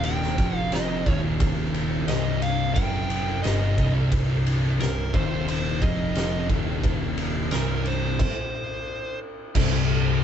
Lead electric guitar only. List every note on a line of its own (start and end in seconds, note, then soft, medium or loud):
0.05 0.57 G5 medium
0.57 0.74 F5 medium
0.73 1.20 D#5 medium
2.08 2.43 D#5 medium
2.42 2.74 F5 medium
2.74 3.39 G5 medium
3.43 3.91 D#5 medium
4.80 5.15 A#4 medium
5.15 5.48 C5 medium
5.50 5.82 C5 medium
5.83 6.46 D#5 medium
7.52 7.87 A#4 medium
7.87 8.18 C5 medium
8.20 9.18 C5 medium